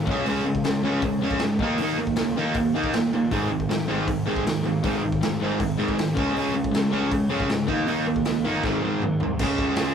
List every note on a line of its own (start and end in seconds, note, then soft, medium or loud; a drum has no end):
0.06 0.24 C#2 medium
0.06 0.24 C#3 medium
0.06 0.25 G#3 medium
0.06 0.25 C#4 medium
0.06 kick loud
0.11 0.27 C#3 medium
0.11 0.27 G#3 medium
0.11 0.27 C#4 loud
0.25 0.44 C#2 loud
0.25 0.44 C#3 medium
0.25 0.44 G#3 loud
0.25 0.45 C#4 loud
0.25 open hi-hat medium
0.45 0.64 C#2 medium
0.45 0.63 C#3 medium
0.45 0.63 G#3 medium
0.55 kick medium
0.64 0.82 C#2 medium
0.64 0.82 C#3 medium
0.64 0.82 G#3 medium
0.64 snare loud
0.64 open hi-hat soft
0.82 1.01 C#2 medium
0.82 1.02 C#3 medium
0.82 1.02 G#3 medium
0.82 1.02 C#4 loud
1.02 1.20 C#3 medium
1.02 1.20 G#3 medium
1.02 kick loud
1.02 open hi-hat medium
1.21 1.39 F2 medium
1.21 1.40 C#3 medium
1.21 1.40 G#3 medium
1.21 1.40 C#4 loud
1.31 kick medium
1.39 1.59 G#2 medium
1.39 1.58 C#3 medium
1.39 1.59 G#3 medium
1.39 snare loud
1.39 open hi-hat soft
1.59 1.77 D#2 medium
1.59 1.78 D#3 medium
1.59 1.78 A#3 medium
1.59 1.78 D#4 medium
1.59 kick loud
1.78 2.14 D#2 medium
1.78 1.97 D#3 medium
1.78 1.97 A#3 medium
1.78 1.97 D#4 loud
1.78 open hi-hat medium
1.98 2.15 D#3 medium
1.98 2.15 A#3 medium
2.07 kick medium
2.16 2.35 C#2 medium
2.16 2.34 D#3 medium
2.16 2.34 A#3 medium
2.16 snare loud
2.16 open hi-hat medium
2.36 2.54 D#2 medium
2.36 2.54 D#3 medium
2.36 2.55 A#3 medium
2.36 2.55 D#4 loud
2.54 2.72 D#2 medium
2.54 2.73 D#3 medium
2.54 2.73 A#3 medium
2.54 kick loud
2.54 open hi-hat medium
2.74 2.92 D#3 medium
2.74 2.92 A#3 medium
2.74 2.92 D#4 loud
2.84 kick medium
2.93 3.12 A#2 medium
2.93 3.10 D#3 medium
2.93 3.11 A#3 medium
2.93 snare loud
2.93 open hi-hat medium
3.13 3.30 A#2 medium
3.13 3.31 D#3 medium
3.13 3.31 A#3 medium
3.31 3.49 G#1 loud
3.31 3.49 G#2 medium
3.31 3.49 D#3 medium
3.31 3.49 G#3 loud
3.31 kick medium
3.31 open hi-hat medium
3.49 3.67 G#1 medium
3.49 3.68 G#2 medium
3.49 3.68 D#3 medium
3.60 kick medium
3.69 3.88 G#1 medium
3.69 3.86 G#2 medium
3.69 3.87 D#3 medium
3.69 snare loud
3.69 open hi-hat soft
3.88 4.06 G#1 medium
3.88 4.05 G#2 medium
3.88 4.06 D#3 medium
3.88 4.06 G#3 medium
4.06 4.24 G#2 medium
4.06 4.25 G#2 medium
4.06 4.24 D#3 medium
4.06 kick loud
4.06 open hi-hat medium
4.26 4.44 C2 medium
4.26 4.44 G#2 medium
4.26 4.44 D#3 medium
4.26 4.44 G#3 loud
4.36 kick medium
4.45 4.63 D#2 medium
4.45 4.62 G#2 medium
4.45 4.63 D#3 medium
4.45 snare loud
4.45 open hi-hat medium
4.63 4.83 D#2 medium
4.63 4.81 G#2 medium
4.63 4.81 D#3 medium
4.83 5.19 G#1 medium
4.83 5.01 G#2 medium
4.83 5.01 D#3 medium
4.83 5.01 G#3 loud
4.83 kick loud
4.83 open hi-hat soft
5.02 5.19 G#2 medium
5.02 5.20 D#3 medium
5.12 kick medium
5.21 5.39 F1 medium
5.21 5.38 G#2 medium
5.21 5.38 D#3 medium
5.21 snare loud
5.21 open hi-hat medium
5.40 5.58 G#1 medium
5.40 5.57 G#2 medium
5.40 5.58 D#3 loud
5.40 5.59 G#3 loud
5.59 5.77 G#1 medium
5.59 5.76 G#2 medium
5.59 5.76 D#3 medium
5.59 kick loud
5.59 open hi-hat medium
5.77 5.95 G#2 medium
5.77 5.96 G#2 medium
5.77 5.96 D#3 medium
5.77 5.97 G#3 medium
5.88 kick medium
5.96 6.15 D#2 medium
5.96 6.14 G#2 medium
5.96 6.14 D#3 medium
5.96 snare loud
5.96 open hi-hat medium
6.14 6.34 C#2 medium
6.14 6.31 C#3 medium
6.14 6.33 G#3 medium
6.14 6.32 C#4 loud
6.14 kick loud
6.33 6.53 C#2 medium
6.33 6.52 C#3 medium
6.33 6.52 G#3 loud
6.33 6.52 C#4 loud
6.33 open hi-hat medium
6.37 6.54 C#3 medium
6.37 6.54 G#3 medium
6.37 6.55 C#4 loud
6.53 6.72 C#2 medium
6.53 6.70 C#3 medium
6.53 6.70 G#3 medium
6.64 kick medium
6.71 6.91 C#2 medium
6.71 6.89 C#3 medium
6.71 6.89 G#3 medium
6.71 snare loud
6.71 open hi-hat medium
6.76 6.92 C#3 medium
6.76 6.92 G#3 medium
6.91 7.10 C#2 medium
6.91 7.09 C#3 medium
6.91 7.09 G#3 medium
6.91 7.10 C#4 loud
7.11 7.28 C#3 medium
7.11 7.29 C#3 medium
7.11 7.29 G#3 medium
7.11 kick loud
7.11 open hi-hat medium
7.29 7.48 F2 loud
7.29 7.48 C#3 medium
7.29 7.48 G#3 medium
7.29 7.48 C#4 loud
7.40 kick medium
7.49 7.69 G#2 loud
7.49 7.66 C#3 medium
7.49 7.66 G#3 medium
7.49 snare loud
7.49 open hi-hat soft
7.67 7.86 D#2 medium
7.67 7.85 D#3 medium
7.67 7.86 A#3 medium
7.67 7.86 D#4 medium
7.67 kick medium
7.87 8.24 D#2 medium
7.87 8.05 D#3 medium
7.87 8.05 A#3 medium
7.87 8.05 D#4 loud
7.87 open hi-hat soft
8.07 8.24 D#3 medium
8.07 8.24 A#3 medium
8.16 kick medium
8.25 8.44 C#2 medium
8.25 8.43 D#3 medium
8.25 8.43 A#3 medium
8.25 snare loud
8.25 open hi-hat medium
8.45 8.63 G1 medium
8.45 8.62 D#3 medium
8.45 8.62 A#3 medium
8.45 8.63 D#4 medium
8.64 8.81 G#1 medium
8.64 8.80 G#2 medium
8.64 8.81 D#3 medium
8.64 8.82 G#3 loud
8.64 kick loud
8.64 snare medium
8.82 9.00 G#2 medium
8.82 9.01 G#2 medium
8.82 9.00 D#3 loud
8.82 9.01 G#3 medium
8.82 high tom medium
9.02 9.20 D#2 medium
9.02 9.19 G#2 medium
9.02 9.20 D#3 medium
9.02 mid tom medium
9.20 9.38 C2 medium
9.20 9.38 G#2 medium
9.20 9.38 D#3 medium
9.20 floor tom medium
9.39 9.53 C#2 medium
9.39 9.94 C#3 loud
9.39 9.94 G#3 loud
9.39 kick loud
9.39 crash loud
9.43 9.94 C#4 loud
9.58 9.72 C#2 medium
9.58 kick medium
9.76 9.92 C#2 loud
9.76 snare loud
9.76 open hi-hat medium